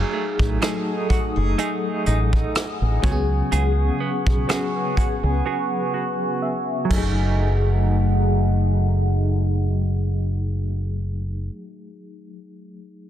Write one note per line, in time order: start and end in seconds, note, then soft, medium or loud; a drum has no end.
0.00 0.33 F#3 medium
0.00 3.15 F#3 medium
0.00 0.33 A3 medium
0.00 3.00 A3 medium
0.00 0.34 D#4 medium
0.00 0.34 G#4 loud
0.00 0.62 G#4 medium
0.00 6.87 F#5 medium
0.00 6.87 G#5 medium
0.00 3.00 D#6 medium
0.13 0.60 A3 medium
0.39 0.57 A1 medium
0.39 kick loud
0.61 1.96 F#3 medium
0.61 1.57 A3 medium
0.61 1.96 A3 medium
0.61 1.58 D#4 medium
0.61 1.97 D#4 medium
0.61 1.10 G#4 medium
0.61 1.97 A4 medium
0.61 cross-stick loud
0.61 closed hi-hat medium
1.10 1.36 F#4 medium
1.10 muted fingered electric bass stroke soft
1.10 kick medium
1.10 closed hi-hat medium
1.36 1.54 F#1 medium
1.36 1.58 G#4 medium
1.58 3.14 A3 medium
1.58 2.06 D#4 medium
1.58 3.52 G#4 medium
1.58 closed hi-hat medium
2.06 2.44 A1 medium
2.06 3.14 D#4 medium
2.06 closed hi-hat medium
2.33 kick medium
2.55 cross-stick loud
2.55 closed hi-hat medium
2.82 2.99 A1 medium
3.03 3.41 C#2 loud
3.03 3.51 C#3 medium
3.03 4.21 F#3 medium
3.03 4.21 B3 medium
3.03 4.22 C#4 medium
3.03 3.12 F#4 medium
3.03 6.87 B4 medium
3.03 6.87 C#6 medium
3.03 kick loud
3.03 closed hi-hat medium
3.12 4.25 G#4 loud
3.52 3.89 C#2 medium
3.52 6.91 C#3 medium
3.52 4.50 G#4 medium
3.52 closed hi-hat medium
4.00 4.48 B3 medium
4.27 4.44 B1 medium
4.27 kick medium
4.48 5.83 F#3 medium
4.48 5.83 B3 medium
4.48 5.44 B3 medium
4.48 5.84 C#4 medium
4.48 4.97 F#4 medium
4.48 4.97 G#4 medium
4.48 5.85 G#4 medium
4.48 cross-stick loud
4.48 closed hi-hat medium
4.97 5.23 F#4 medium
4.97 5.42 G#5 medium
4.97 muted fingered electric bass stroke soft
4.97 kick medium
4.97 closed hi-hat medium
5.23 5.41 C#2 medium
5.23 5.45 G#4 medium
5.46 6.91 B3 medium
5.46 5.94 F#4 medium
5.46 6.95 G#4 medium
5.46 6.38 F#5 medium
5.94 6.98 F#4 medium
6.42 6.87 E5 medium
6.85 11.42 F#3 medium
6.85 11.47 F#3 medium
6.89 11.48 F#1 medium
6.89 11.46 A3 medium
6.89 11.48 A3 medium
6.89 11.54 A3 medium
6.89 11.48 D#4 medium
6.89 11.48 G#4 medium
6.89 11.48 F#5 medium
6.89 kick medium
6.89 crash medium
6.93 11.50 D#4 medium
6.93 11.54 G#4 medium
6.98 11.60 D#4 medium
7.03 11.65 G#4 medium